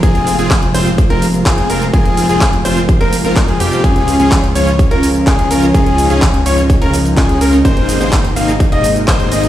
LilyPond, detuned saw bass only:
\new Staff \with { instrumentName = "Detuned saw bass" } { \clef bass \time 4/4 \key f \minor \tempo 4 = 126 f,,8. f,,8. f,,8. f,,8. f,,8 f,,8 | f,,8. f,,8. f,,8. f,,8 f,,8 f,,16 f,8 | des,8. des,8. des,8. des,8. des,8 des,8 | des,8. des,8. des,8. des,8. des,8 des,8 |
aes,,8. aes,,8. aes,,8. aes,,8. aes,,8 aes,,8 | }